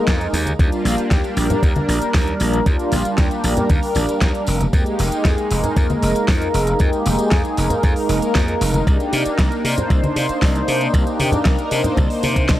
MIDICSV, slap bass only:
0, 0, Header, 1, 3, 480
1, 0, Start_track
1, 0, Tempo, 517241
1, 551, Time_signature, 4, 2, 24, 8
1, 11690, End_track
2, 0, Start_track
2, 0, Title_t, "Slap bass"
2, 0, Program_c, 0, 36
2, 72, Note_on_c, 0, 41, 94
2, 244, Note_off_c, 0, 41, 0
2, 307, Note_on_c, 0, 39, 95
2, 482, Note_off_c, 0, 39, 0
2, 552, Note_on_c, 0, 39, 97
2, 638, Note_off_c, 0, 39, 0
2, 789, Note_on_c, 0, 34, 87
2, 877, Note_off_c, 0, 34, 0
2, 1031, Note_on_c, 0, 39, 74
2, 1118, Note_off_c, 0, 39, 0
2, 1269, Note_on_c, 0, 34, 87
2, 1357, Note_off_c, 0, 34, 0
2, 1511, Note_on_c, 0, 39, 90
2, 1598, Note_off_c, 0, 39, 0
2, 1748, Note_on_c, 0, 34, 84
2, 1836, Note_off_c, 0, 34, 0
2, 1992, Note_on_c, 0, 39, 91
2, 2164, Note_off_c, 0, 39, 0
2, 2232, Note_on_c, 0, 34, 95
2, 2405, Note_off_c, 0, 34, 0
2, 2471, Note_on_c, 0, 39, 95
2, 2558, Note_off_c, 0, 39, 0
2, 2712, Note_on_c, 0, 34, 91
2, 2798, Note_off_c, 0, 34, 0
2, 2953, Note_on_c, 0, 39, 77
2, 3039, Note_off_c, 0, 39, 0
2, 3192, Note_on_c, 0, 34, 82
2, 3278, Note_off_c, 0, 34, 0
2, 3432, Note_on_c, 0, 39, 86
2, 3518, Note_off_c, 0, 39, 0
2, 3671, Note_on_c, 0, 34, 82
2, 3758, Note_off_c, 0, 34, 0
2, 3912, Note_on_c, 0, 39, 88
2, 3998, Note_off_c, 0, 39, 0
2, 4153, Note_on_c, 0, 29, 88
2, 4325, Note_off_c, 0, 29, 0
2, 4392, Note_on_c, 0, 41, 91
2, 4479, Note_off_c, 0, 41, 0
2, 4634, Note_on_c, 0, 29, 86
2, 4720, Note_off_c, 0, 29, 0
2, 4872, Note_on_c, 0, 41, 78
2, 4959, Note_off_c, 0, 41, 0
2, 5114, Note_on_c, 0, 29, 81
2, 5199, Note_off_c, 0, 29, 0
2, 5350, Note_on_c, 0, 41, 91
2, 5438, Note_off_c, 0, 41, 0
2, 5591, Note_on_c, 0, 29, 82
2, 5678, Note_off_c, 0, 29, 0
2, 5832, Note_on_c, 0, 41, 87
2, 6004, Note_off_c, 0, 41, 0
2, 6070, Note_on_c, 0, 29, 95
2, 6244, Note_off_c, 0, 29, 0
2, 6312, Note_on_c, 0, 41, 94
2, 6398, Note_off_c, 0, 41, 0
2, 6552, Note_on_c, 0, 29, 90
2, 6638, Note_off_c, 0, 29, 0
2, 6792, Note_on_c, 0, 41, 74
2, 6878, Note_off_c, 0, 41, 0
2, 7032, Note_on_c, 0, 29, 84
2, 7118, Note_off_c, 0, 29, 0
2, 7273, Note_on_c, 0, 41, 94
2, 7359, Note_off_c, 0, 41, 0
2, 7509, Note_on_c, 0, 29, 88
2, 7597, Note_off_c, 0, 29, 0
2, 7752, Note_on_c, 0, 41, 88
2, 7925, Note_off_c, 0, 41, 0
2, 7991, Note_on_c, 0, 29, 94
2, 8164, Note_off_c, 0, 29, 0
2, 8232, Note_on_c, 0, 36, 94
2, 8318, Note_off_c, 0, 36, 0
2, 8471, Note_on_c, 0, 48, 92
2, 8558, Note_off_c, 0, 48, 0
2, 8710, Note_on_c, 0, 36, 76
2, 8798, Note_off_c, 0, 36, 0
2, 8951, Note_on_c, 0, 48, 88
2, 9038, Note_off_c, 0, 48, 0
2, 9189, Note_on_c, 0, 36, 91
2, 9277, Note_off_c, 0, 36, 0
2, 9429, Note_on_c, 0, 48, 81
2, 9517, Note_off_c, 0, 48, 0
2, 9670, Note_on_c, 0, 36, 86
2, 9843, Note_off_c, 0, 36, 0
2, 9911, Note_on_c, 0, 48, 97
2, 10084, Note_off_c, 0, 48, 0
2, 10150, Note_on_c, 0, 36, 97
2, 10237, Note_off_c, 0, 36, 0
2, 10390, Note_on_c, 0, 48, 90
2, 10477, Note_off_c, 0, 48, 0
2, 10630, Note_on_c, 0, 36, 74
2, 10717, Note_off_c, 0, 36, 0
2, 10872, Note_on_c, 0, 48, 84
2, 10958, Note_off_c, 0, 48, 0
2, 11112, Note_on_c, 0, 36, 89
2, 11198, Note_off_c, 0, 36, 0
2, 11353, Note_on_c, 0, 48, 93
2, 11593, Note_on_c, 0, 36, 77
2, 11607, Note_off_c, 0, 48, 0
2, 11690, Note_off_c, 0, 36, 0
2, 11690, End_track
3, 0, Start_track
3, 0, Title_t, "Muted slap bass strokes"
3, 7629, Note_on_c, 9, 29, 42
3, 7722, Note_off_c, 9, 29, 0
3, 8592, Note_on_c, 9, 29, 39
3, 8685, Note_off_c, 9, 29, 0
3, 9551, Note_on_c, 9, 29, 39
3, 9644, Note_off_c, 9, 29, 0
3, 10511, Note_on_c, 9, 29, 41
3, 10604, Note_off_c, 9, 29, 0
3, 11690, End_track
0, 0, End_of_file